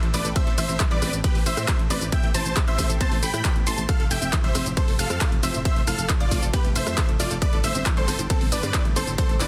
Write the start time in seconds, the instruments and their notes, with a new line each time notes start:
Already playing: analog synth pad E3 A3 C4 G4
0.03 fm bass A1, synth arpeggio sound A4, closed hi-hat
0.14 fm bass A1, synth arpeggio sound A3, supersaw synth B4 D5, synth pluck D5, open hi-hat, shaker
0.25 fm bass A1, synth arpeggio sound A4, closed hi-hat, shaker
0.36 synth arpeggio sound A3, supersaw synth C5 E5, synth pluck E5, kick, closed hi-hat, ride, shaker
0.47 fm bass A1, synth arpeggio sound A4, closed hi-hat
0.58 fm bass A1, synth arpeggio sound A3, supersaw synth C5 E5, synth pluck E5, open hi-hat, shaker
0.69 fm bass A1, synth arpeggio sound C4, closed hi-hat, shaker
0.80 synth arpeggio sound E3, kick, clap, closed hi-hat, ride, shaker
0.91 fm bass A1, synth arpeggio sound G3, supersaw synth B4 D5, synth pluck D5, closed hi-hat
1.02 fm bass A1, synth arpeggio sound C4, cross-stick, open hi-hat, shaker
1.13 fm bass A1, synth arpeggio sound A2, closed hi-hat, shaker
1.24 synth arpeggio sound B3, supersaw synth G4 B4, synth pluck B4, kick, closed hi-hat, ride, shaker
1.35 fm bass A1, open hi-hat
1.46 fm bass A1, supersaw synth C5 E5, synth pluck E5, open hi-hat, shaker
1.57 fm bass A2, synth arpeggio sound C4, cross-stick, closed hi-hat, shaker
1.68 synth arpeggio sound E4, kick, clap, closed hi-hat, ride, shaker
1.79 fm bass A1, synth arpeggio sound A3, closed hi-hat
1.90 fm bass A1, synth arpeggio sound C4, supersaw synth B4 D5, synth pluck D5, open hi-hat, shaker
2.01 fm bass A1, synth arpeggio sound A2, closed hi-hat, shaker
2.12 synth arpeggio sound B3, supersaw synth E5 G5, synth pluck G5, kick, closed hi-hat, ride, shaker
2.23 fm bass A1, synth arpeggio sound A3, closed hi-hat
2.34 fm bass A1, synth arpeggio sound E4, supersaw synth C5 A5, synth pluck A5, open hi-hat, shaker
2.45 fm bass A1, closed hi-hat, shaker
2.56 synth arpeggio sound E4, kick, clap, closed hi-hat, ride, shaker
2.67 fm bass A1, supersaw synth C5 E5, synth pluck E5, closed hi-hat
2.79 fm bass A1, synth arpeggio sound A3, kick, open hi-hat, shaker
2.90 fm bass A1, synth arpeggio sound A4, closed hi-hat, shaker
3.01 synth arpeggio sound B3, supersaw synth C5 A5, synth pluck A5, kick, closed hi-hat, ride, shaker
3.12 fm bass A1, synth arpeggio sound A3, open hi-hat
3.23 fm bass A1, synth arpeggio sound A4, supersaw synth G5 B5, synth pluck B5, open hi-hat, shaker
3.34 fm bass A2, synth arpeggio sound E4, cross-stick, closed hi-hat, shaker
3.45 synth arpeggio sound B3, kick, clap, closed hi-hat, ride, shaker
3.56 fm bass A1, synth arpeggio sound B3, closed hi-hat
3.67 fm bass A1, synth arpeggio sound E3, supersaw synth A5 C6, synth pluck C6, open hi-hat, shaker
3.78 fm bass A1, synth arpeggio sound A3, closed hi-hat, shaker
3.89 analog synth pad F3, synth arpeggio sound A3, supersaw synth A4 F5, synth pluck F5, kick, closed hi-hat, ride, shaker
4.00 fm bass F1, synth arpeggio sound A4, closed hi-hat
4.11 fm bass F1, synth arpeggio sound A3, supersaw synth E5 G5, synth pluck G5, open hi-hat, shaker
4.22 fm bass F1, synth arpeggio sound C4, closed hi-hat, shaker
4.33 synth arpeggio sound E3, kick, clap, closed hi-hat, ride, shaker
4.44 fm bass F1, synth arpeggio sound G3, supersaw synth C5 E5, synth pluck E5, closed hi-hat
4.55 fm bass F1, synth arpeggio sound C4, cross-stick, open hi-hat, shaker
4.66 fm bass F1, synth arpeggio sound A2, closed hi-hat, shaker
4.77 synth arpeggio sound B3, supersaw synth A4 C5, synth pluck C5, kick, closed hi-hat, ride, shaker
4.88 fm bass F1, open hi-hat
4.99 fm bass F1, supersaw synth A4 F5, synth pluck F5, open hi-hat, shaker
5.10 fm bass F2, synth arpeggio sound C4, cross-stick, closed hi-hat, shaker
5.21 synth arpeggio sound E4, kick, clap, closed hi-hat, ride, shaker
5.32 fm bass F1, synth arpeggio sound A3, closed hi-hat
5.43 fm bass F1, synth arpeggio sound C4, supersaw synth C5 E5, synth pluck E5, open hi-hat, shaker
5.54 fm bass F1, synth arpeggio sound A2, closed hi-hat, shaker
5.65 synth arpeggio sound B3, supersaw synth C5 E5, synth pluck E5, kick, closed hi-hat, ride, shaker
5.76 fm bass F1, synth arpeggio sound A3, closed hi-hat
5.87 fm bass F1, synth arpeggio sound E4, supersaw synth A4 F5, synth pluck F5, open hi-hat, shaker
5.98 fm bass F1, closed hi-hat, shaker
6.09 synth arpeggio sound E4, kick, clap, closed hi-hat, ride, shaker
6.20 fm bass F1, supersaw synth F4 D5, synth pluck D5, closed hi-hat
6.31 fm bass F1, synth arpeggio sound A3, kick, open hi-hat, shaker
6.42 fm bass F1, synth arpeggio sound A4, closed hi-hat, shaker
6.53 synth arpeggio sound B3, supersaw synth G4 B4, synth pluck B4, kick, closed hi-hat, ride, shaker
6.65 fm bass F1, synth arpeggio sound A3, closed hi-hat
6.76 fm bass F1, synth arpeggio sound A3, supersaw synth C5 E5, synth pluck E5, open hi-hat, shaker
6.87 fm bass F2, synth arpeggio sound A3, cross-stick, closed hi-hat, shaker
6.98 synth arpeggio sound E4, kick, clap, closed hi-hat, ride, shaker
7.09 fm bass F1, synth arpeggio sound A4, closed hi-hat
7.20 fm bass F1, synth arpeggio sound A3, supersaw synth F4 D5, synth pluck D5, open hi-hat, shaker
7.31 fm bass F1, synth arpeggio sound A4, closed hi-hat, shaker
7.42 analog synth pad D3 G3 C4 G4, synth arpeggio sound A3, supersaw synth B4 D5, synth pluck D5, kick, closed hi-hat, ride, shaker
7.53 fm bass G1, synth arpeggio sound A4, closed hi-hat
7.64 fm bass G1, synth arpeggio sound A3, supersaw synth C5 E5, synth pluck E5, open hi-hat, shaker
7.75 fm bass G1, synth arpeggio sound C4, closed hi-hat, shaker
7.86 synth arpeggio sound E3, kick, clap, closed hi-hat, ride, shaker
7.97 fm bass G1, synth arpeggio sound G3, supersaw synth A4 C5, synth pluck C5, closed hi-hat
8.08 fm bass G1, synth arpeggio sound C4, cross-stick, open hi-hat, shaker
8.19 fm bass G1, synth arpeggio sound A2, closed hi-hat, shaker
8.30 synth arpeggio sound B3, supersaw synth C4 A4, synth pluck A4, kick, closed hi-hat, ride, shaker
8.41 fm bass G1, open hi-hat
8.52 fm bass G1, supersaw synth B4 D5, synth pluck D5, open hi-hat, shaker
8.63 fm bass G2, synth arpeggio sound C4, cross-stick, closed hi-hat, shaker
8.74 synth arpeggio sound E4, kick, clap, closed hi-hat, ride, shaker
8.85 fm bass G1, synth arpeggio sound A3, closed hi-hat
8.96 fm bass G1, synth arpeggio sound C4, supersaw synth A4 C5, synth pluck C5, open hi-hat, shaker
9.07 fm bass G1, synth arpeggio sound A2, closed hi-hat, shaker
9.18 synth arpeggio sound B3, supersaw synth A4 C5, synth pluck C5, kick, closed hi-hat, ride, shaker
9.29 fm bass G1, synth arpeggio sound A3, closed hi-hat
9.40 fm bass G1, synth arpeggio sound E4, supersaw synth B4 D5, synth pluck D5, clap, open hi-hat, shaker